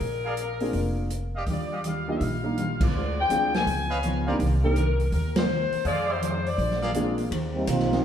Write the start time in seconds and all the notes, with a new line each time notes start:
Already playing: A#4
0.00 A#1, kick, open hi-hat
0.25 G#4 A#4 D5 F5
0.37 closed hi-hat
0.60 A#3 C4 D4 F4 G#4, open hi-hat
0.73 F1, kick, open hi-hat
1.10 closed hi-hat
1.35 G4 D5 D#5 F5
1.46 D#2 D#3 G3 D4, kick, open hi-hat
1.51 F4 D5
1.72 G4 D5 D#5 F5
1.84 D#3 G3 D4 F4 F5, closed hi-hat
2.08 A#3 D4 D#4 F4 G4 D#5
2.16 E5
2.20 A#1 D#3 G3 D4 F5, kick, open hi-hat
2.25 F4
2.43 A#3 D4 D#4 F4 A#4
2.57 D#3 G3 D4 F4, closed hi-hat
2.81 D5, kick, crash
2.93 D2 D3 G#3 C4
2.97 F4
3.19 G5
3.30 D2 D3 G#3 C4 D4 E4 F4 G#4, closed hi-hat
3.54 G#5, snare, open hi-hat
3.66 C#2 C#3 F3 B3 D#4, kick, open hi-hat
3.90 B4 C#5 D#5 F5
4.03 C#3 F3 B3 D#4, closed hi-hat
4.27 A#3 C4 D4 D#4 G4 A#4 C5 D5 F5
4.39 C2 C3 D#3 A#3, kick, open hi-hat
4.44 D4
4.64 A#3 C4 D4 D#4 G4 A#4
4.76 C3 D#3 A#3 D4, closed hi-hat
5.00 open hi-hat
5.12 D#2 C3 D#3 A#3 D4 A#4, kick, open hi-hat
5.36 C5, snare, ride
5.49 C3 D#3 A#3 D4
5.72 muted upright bass stroke, open hi-hat
5.84 F2 D#3 G#3 C4 G#4 C5 D5 D#5 F5, kick, open hi-hat
6.10 C5
6.21 F2 D#3 G#3 C4, closed hi-hat
6.46 D5, open hi-hat
6.58 A#1 A#2 F3 G#3 D4, kick, open hi-hat
6.71 snare
6.82 G#4 A#4 D5 F5, snare
6.94 A#2 F3 G#3 A#3 C4 D4 F4 G#4, closed hi-hat
7.18 open hi-hat
7.30 D#2 D#3 A#3 C4 G4, kick, ride
7.54 G3 A#3 C4 D#4
7.67 B1 D#3 A#3 C4 D#4 F4 G4, kick, hi-hat pedal, ride
7.79 snare
7.92 A#3 C4 D#4 F4 G4, snare